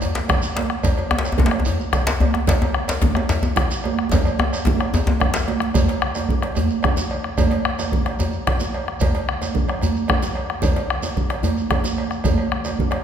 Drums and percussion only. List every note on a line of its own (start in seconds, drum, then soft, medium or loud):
0.01 cowbell soft
0.01 high conga soft
0.01 djembe bass medium
0.01 shekere medium
0.15 djembe slap medium
0.15 high conga medium
0.15 shekere soft
0.28 bombo rim loud
0.28 bombo low loud
0.28 cowbell medium
0.28 djembe slap medium
0.28 low conga medium
0.28 shekere soft
0.42 djembe tone medium
0.42 high conga soft
0.42 shekere soft
0.56 cowbell medium
0.56 djembe slap medium
0.56 high conga medium
0.70 bombo rim medium
0.83 bombo low loud
0.83 cowbell medium
0.83 djembe slap medium
0.83 djembe bass medium
0.83 low conga medium
0.83 shekere medium
0.98 cowbell medium
0.98 high conga medium
1.11 bombo rim loud
1.11 djembe tone loud
1.18 djembe slap medium
1.25 bombo rim soft
1.25 cowbell medium
1.25 djembe tone medium
1.25 shekere soft
1.32 djembe tone medium
1.38 bombo low loud
1.38 djembe slap medium
1.38 high conga medium
1.38 djembe tone loud
1.38 low conga medium
1.46 djembe slap medium
1.51 bombo rim medium
1.51 cowbell medium
1.59 djembe tone medium
1.65 cowbell soft
1.65 high conga soft
1.65 djembe bass medium
1.65 shekere medium
1.80 high conga medium
1.80 shekere soft
1.93 bombo rim medium
1.93 bombo low loud
1.93 cowbell medium
1.93 djembe slap medium
1.93 low conga medium
1.93 shekere soft
2.07 djembe slap loud
2.07 djembe tone medium
2.07 high conga soft
2.07 shekere soft
2.20 cowbell medium
2.20 high conga medium
2.20 djembe bass medium
2.34 bombo rim medium
2.34 djembe tone medium
2.47 bombo low loud
2.47 cowbell medium
2.47 djembe slap medium
2.47 djembe bass medium
2.47 low conga medium
2.47 shekere medium
2.61 cowbell medium
2.61 high conga medium
2.61 djembe tone medium
2.74 bombo rim medium
2.88 bombo rim soft
2.88 cowbell medium
2.88 djembe slap loud
2.88 djembe tone medium
2.88 shekere soft
3.02 bombo low loud
3.02 djembe slap medium
3.02 high conga medium
3.02 low conga medium
3.02 djembe bass medium
3.15 bombo rim medium
3.15 cowbell medium
3.15 high conga soft
3.15 djembe tone medium
3.29 cowbell soft
3.29 djembe slap medium
3.29 high conga soft
3.29 djembe bass medium
3.29 shekere medium
3.42 djembe tone medium
3.42 high conga medium
3.42 shekere soft
3.56 bombo rim loud
3.56 bombo low loud
3.56 cowbell medium
3.56 djembe slap medium
3.56 low conga medium
3.56 shekere soft
3.70 djembe tone medium
3.70 high conga soft
3.70 shekere soft
3.84 cowbell medium
3.84 high conga medium
3.99 bombo rim medium
4.12 bombo low loud
4.12 cowbell medium
4.12 djembe slap medium
4.12 djembe tone loud
4.12 djembe bass medium
4.12 low conga medium
4.12 shekere medium
4.25 bombo rim soft
4.25 cowbell medium
4.25 high conga medium
4.25 shekere soft
4.39 bombo rim medium
4.39 djembe tone loud
4.53 bombo rim soft
4.53 cowbell medium
4.53 djembe slap soft
4.53 djembe tone medium
4.53 shekere soft
4.65 bombo rim soft
4.65 bombo low loud
4.65 djembe slap medium
4.65 djembe tone loud
4.65 high conga medium
4.65 low conga medium
4.80 bombo rim medium
4.80 cowbell soft
4.80 high conga soft
4.94 cowbell soft
4.94 djembe tone loud
4.94 high conga soft
4.94 djembe bass medium
4.94 shekere medium
5.07 djembe tone loud
5.07 high conga medium
5.20 bombo rim loud
5.20 bombo low loud
5.20 cowbell medium
5.20 high conga soft
5.20 low conga medium
5.20 djembe bass soft
5.34 bombo rim soft
5.34 djembe slap loud
5.34 djembe bass soft
5.34 shekere soft
5.48 bombo rim soft
5.48 cowbell soft
5.48 djembe slap medium
5.48 high conga medium
5.60 bombo rim medium
5.60 djembe slap medium
5.74 bombo low loud
5.74 cowbell medium
5.74 djembe slap soft
5.74 high conga medium
5.74 low conga medium
5.74 djembe bass medium
5.74 shekere medium
5.88 cowbell soft
5.88 djembe slap medium
5.88 high conga soft
6.02 bombo rim medium
6.15 bombo rim soft
6.15 cowbell medium
6.15 high conga medium
6.15 djembe tone medium
6.15 shekere soft
6.29 bombo low loud
6.29 low conga medium
6.42 bombo rim medium
6.42 cowbell medium
6.42 djembe slap medium
6.55 cowbell soft
6.55 djembe slap soft
6.55 high conga medium
6.55 djembe bass medium
6.55 shekere medium
6.70 shekere soft
6.83 bombo rim loud
6.83 bombo low loud
6.83 cowbell medium
6.83 low conga medium
6.97 djembe slap medium
6.97 djembe tone medium
6.97 high conga medium
6.97 shekere soft
7.11 bombo rim soft
7.11 cowbell medium
7.11 djembe slap soft
7.24 bombo rim medium
7.24 high conga soft
7.38 bombo low loud
7.38 cowbell medium
7.38 djembe slap soft
7.38 high conga medium
7.38 djembe bass medium
7.38 low conga medium
7.38 shekere medium
7.51 cowbell medium
7.51 djembe slap medium
7.51 high conga soft
7.65 bombo rim loud
7.79 bombo rim soft
7.79 cowbell medium
7.79 djembe tone medium
7.79 high conga medium
7.79 shekere medium
7.92 bombo low loud
7.92 low conga medium
8.06 bombo rim medium
8.06 cowbell medium
8.06 djembe slap medium
8.19 cowbell soft
8.19 djembe slap soft
8.19 high conga medium
8.19 djembe bass medium
8.19 shekere medium
8.33 shekere soft
8.47 bombo rim medium
8.47 bombo low loud
8.47 cowbell medium
8.47 low conga medium
8.60 djembe slap medium
8.60 djembe tone medium
8.60 high conga medium
8.60 shekere soft
8.74 bombo rim soft
8.74 cowbell medium
8.74 djembe slap soft
8.88 bombo rim medium
8.88 high conga soft
9.00 bombo low loud
9.00 cowbell medium
9.00 djembe slap soft
9.00 high conga medium
9.00 low conga medium
9.00 djembe bass medium
9.00 shekere medium
9.15 cowbell medium
9.15 djembe slap medium
9.15 high conga soft
9.29 bombo rim medium
9.42 cowbell medium
9.42 djembe tone medium
9.42 high conga medium
9.42 shekere soft
9.55 bombo low loud
9.55 low conga medium
9.69 bombo rim medium
9.69 cowbell medium
9.81 cowbell soft
9.81 djembe slap soft
9.81 high conga medium
9.81 djembe bass medium
9.81 shekere medium
9.96 shekere soft
10.08 bombo rim loud
10.08 bombo low medium
10.08 cowbell medium
10.08 low conga medium
10.22 djembe slap medium
10.22 djembe tone medium
10.22 high conga medium
10.22 shekere soft
10.35 cowbell medium
10.35 djembe slap soft
10.49 bombo rim medium
10.49 high conga soft
10.62 bombo rim soft
10.62 bombo low loud
10.62 cowbell medium
10.62 high conga medium
10.62 low conga medium
10.62 djembe bass medium
10.62 shekere medium
10.76 cowbell medium
10.76 djembe slap medium
10.76 high conga soft
10.90 bombo rim medium
11.03 cowbell soft
11.03 high conga medium
11.03 djembe tone medium
11.03 shekere soft
11.17 bombo low loud
11.17 djembe slap soft
11.17 high conga soft
11.17 low conga medium
11.17 shekere soft
11.30 bombo rim medium
11.30 cowbell soft
11.30 djembe slap medium
11.43 cowbell soft
11.43 high conga medium
11.43 djembe bass medium
11.43 shekere medium
11.58 shekere soft
11.70 bombo rim medium
11.70 bombo low medium
11.70 cowbell medium
11.70 djembe slap soft
11.70 high conga soft
11.70 low conga medium
11.84 djembe slap medium
11.84 djembe tone medium
11.84 high conga medium
11.84 shekere medium
11.98 bombo rim soft
11.98 cowbell medium
12.11 bombo rim medium
12.11 shekere soft
12.24 bombo low loud
12.24 cowbell medium
12.24 djembe slap soft
12.24 high conga medium
12.24 djembe bass medium
12.24 low conga medium
12.24 shekere soft
12.38 cowbell medium
12.38 high conga soft
12.52 bombo rim medium
12.65 bombo rim soft
12.65 cowbell medium
12.65 djembe tone medium
12.65 high conga medium
12.65 shekere soft
12.79 bombo low loud
12.79 low conga medium
12.91 bombo rim medium
12.91 cowbell medium
12.91 djembe slap medium